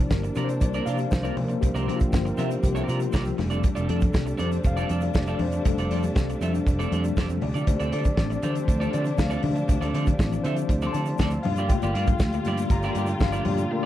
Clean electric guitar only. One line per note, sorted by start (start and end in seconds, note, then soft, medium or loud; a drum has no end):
0.00 muted clean electric guitar stroke soft
0.11 muted clean electric guitar stroke soft
0.23 muted clean electric guitar stroke soft
0.36 0.53 C4 medium
0.36 0.50 F4 medium
0.36 0.49 A#4 medium
0.36 0.48 D5 medium
0.50 muted clean electric guitar stroke soft
0.61 muted clean electric guitar stroke soft
0.74 0.86 C4 medium
0.74 0.87 F4 medium
0.74 0.87 A#4 medium
0.74 0.87 D5 medium
0.87 1.00 C4 medium
0.87 0.99 F4 medium
0.87 0.98 A#4 medium
0.87 0.98 D5 medium
0.99 muted clean electric guitar stroke medium
1.12 muted clean electric guitar stroke soft
1.23 1.35 C4 medium
1.23 1.36 F4 medium
1.23 1.36 A#4 medium
1.23 1.36 D5 medium
1.36 muted clean electric guitar stroke soft
1.48 muted clean electric guitar stroke soft
1.62 muted clean electric guitar stroke soft
1.75 1.86 C4 medium
1.75 1.87 F4 medium
1.75 1.87 A#4 medium
1.75 1.88 D5 medium
1.87 2.01 C4 medium
1.87 2.00 F4 medium
1.87 1.99 A#4 medium
1.87 1.99 D5 medium
2.00 muted clean electric guitar stroke soft
2.13 muted clean electric guitar stroke soft
2.25 muted clean electric guitar stroke soft
2.38 2.55 C4 medium
2.38 2.51 F4 medium
2.38 2.50 A#4 medium
2.38 2.51 E5 medium
2.51 muted clean electric guitar stroke soft
2.63 muted clean electric guitar stroke soft
2.75 2.87 C4 medium
2.75 2.87 F4 medium
2.75 2.88 A#4 medium
2.75 2.88 D5 medium
2.88 3.02 C4 medium
2.88 3.00 F4 medium
2.88 3.00 A#4 medium
2.88 2.99 D5 medium
3.00 muted clean electric guitar stroke medium
3.13 3.30 C4 medium
3.13 3.25 F4 medium
3.13 3.25 A#4 loud
3.13 3.24 D5 medium
3.25 muted clean electric guitar stroke soft
3.37 muted clean electric guitar stroke soft
3.50 3.62 C4 soft
3.50 3.63 F4 medium
3.50 3.63 A4 medium
3.50 3.63 D5 medium
3.63 muted clean electric guitar stroke soft
3.75 3.87 C4 medium
3.75 3.88 F4 medium
3.75 3.88 A4 medium
3.75 3.89 D5 medium
3.88 4.02 C4 medium
3.88 4.02 F4 medium
3.88 4.01 A4 medium
3.88 4.01 D5 medium
4.02 muted clean electric guitar stroke soft
4.13 muted clean electric guitar stroke soft
4.26 muted clean electric guitar stroke soft
4.38 4.56 C4 medium
4.38 4.52 F4 medium
4.38 4.51 A4 medium
4.38 4.51 D5 medium
4.52 muted clean electric guitar stroke soft
4.65 muted clean electric guitar stroke soft
4.77 4.89 C4 medium
4.77 4.89 F4 medium
4.77 4.90 A4 medium
4.77 4.90 D5 medium
4.90 5.03 C4 medium
4.90 5.02 F4 medium
4.90 5.02 A4 medium
4.90 5.01 D5 medium
5.02 muted clean electric guitar stroke medium
5.14 muted clean electric guitar stroke soft
5.28 5.39 C4 medium
5.28 5.40 F4 medium
5.28 5.40 A4 medium
5.28 5.41 D5 medium
5.40 muted clean electric guitar stroke soft
5.53 muted clean electric guitar stroke soft
5.65 muted clean electric guitar stroke soft
5.79 5.90 C4 medium
5.79 5.91 F4 medium
5.79 5.91 A4 medium
5.79 5.92 D5 medium
5.91 6.05 C4 medium
5.91 6.04 F4 medium
5.91 6.04 A4 medium
5.91 6.03 D5 medium
6.05 muted clean electric guitar stroke soft
6.17 muted clean electric guitar stroke soft
6.30 muted clean electric guitar stroke soft
6.41 6.59 C4 medium
6.41 6.54 F4 medium
6.41 6.54 A4 medium
6.41 6.54 E5 medium
6.55 muted clean electric guitar stroke soft
6.67 muted clean electric guitar stroke medium
6.79 6.91 C4 medium
6.79 6.92 F4 medium
6.79 6.92 A4 medium
6.79 6.92 D5 medium
6.92 7.05 C4 medium
6.92 7.05 F4 medium
6.92 7.05 A4 medium
6.92 7.04 D5 medium
7.05 muted clean electric guitar stroke soft
7.17 7.34 C4 medium
7.17 7.30 F4 medium
7.17 7.29 A4 medium
7.17 7.29 D5 medium
7.30 muted clean electric guitar stroke medium
7.43 muted clean electric guitar stroke medium
7.54 7.66 C4 soft
7.54 7.66 F4 medium
7.54 7.66 A4 medium
7.54 7.66 D5 medium
7.67 muted clean electric guitar stroke soft
7.79 7.91 C4 medium
7.79 7.91 F4 medium
7.79 7.92 A4 medium
7.79 7.92 D5 medium
7.92 8.06 C4 medium
7.92 8.05 F4 medium
7.92 8.04 A4 medium
7.92 8.04 D5 medium
8.05 muted clean electric guitar stroke soft
8.18 muted clean electric guitar stroke soft
8.30 muted clean electric guitar stroke soft
8.43 8.60 C4 medium
8.43 8.56 F4 medium
8.43 8.55 A4 medium
8.43 8.54 D5 medium
8.56 muted clean electric guitar stroke soft
8.67 muted clean electric guitar stroke soft
8.80 8.92 C4 medium
8.80 8.93 F4 medium
8.80 8.93 A4 medium
8.80 8.93 D5 medium
8.93 9.07 C4 medium
8.93 9.05 F4 medium
8.93 9.05 A4 medium
8.93 9.05 D5 medium
9.06 muted clean electric guitar stroke medium
9.18 muted clean electric guitar stroke soft
9.30 9.41 C4 medium
9.30 9.42 F4 medium
9.30 9.42 A4 medium
9.30 9.42 D5 medium
9.42 muted clean electric guitar stroke soft
9.56 muted clean electric guitar stroke soft
9.68 muted clean electric guitar stroke soft
9.81 9.93 C4 medium
9.81 9.93 F4 medium
9.81 9.94 A4 medium
9.81 9.95 D5 medium
9.94 10.07 C4 medium
9.94 10.07 F4 medium
9.94 10.07 A4 medium
9.94 10.06 D5 medium
10.07 muted clean electric guitar stroke soft
10.19 muted clean electric guitar stroke medium
10.33 muted clean electric guitar stroke soft
10.45 10.62 C4 medium
10.45 10.57 F4 medium
10.45 10.56 A4 medium
10.45 10.57 E5 medium
10.57 muted clean electric guitar stroke soft
10.70 muted clean electric guitar stroke soft
10.82 10.94 C4 medium
10.82 10.94 F4 medium
10.82 10.95 A4 medium
10.82 10.95 D5 medium
10.95 11.08 C4 medium
10.95 11.08 F4 medium
10.95 11.08 A4 medium
10.95 11.07 D5 medium
11.08 muted clean electric guitar stroke medium
11.20 11.37 C4 medium
11.20 11.33 F4 loud
11.20 11.33 A4 medium
11.20 11.32 D5 loud
11.33 muted clean electric guitar stroke soft
11.45 muted clean electric guitar stroke soft
11.58 11.70 A#3 soft
11.58 11.71 F4 medium
11.58 11.71 G4 medium
11.58 11.71 D5 medium
11.71 muted clean electric guitar stroke soft
11.83 11.94 A#3 medium
11.83 11.95 F4 medium
11.83 11.95 G4 medium
11.83 11.95 D5 medium
11.95 12.09 A#3 medium
11.95 12.09 F4 medium
11.95 12.08 G4 medium
11.95 12.08 D5 medium
12.09 muted clean electric guitar stroke soft
12.22 muted clean electric guitar stroke soft
12.34 muted clean electric guitar stroke medium
12.47 12.63 A#3 medium
12.47 12.60 F4 medium
12.47 12.59 G4 medium
12.47 12.59 D5 medium
12.60 muted clean electric guitar stroke soft
12.72 muted clean electric guitar stroke soft
12.84 12.96 A#3 medium
12.84 12.96 F4 medium
12.84 12.97 G4 medium
12.84 12.97 D5 medium
12.97 13.10 A#3 medium
12.97 13.09 F4 medium
12.97 13.08 G4 medium
12.97 13.08 D5 medium
13.09 muted clean electric guitar stroke medium
13.20 muted clean electric guitar stroke medium
13.32 13.44 A#3 medium
13.32 13.45 F4 medium
13.32 13.45 G4 medium
13.32 13.45 D5 medium
13.46 muted clean electric guitar stroke soft
13.57 muted clean electric guitar stroke soft
13.71 muted clean electric guitar stroke soft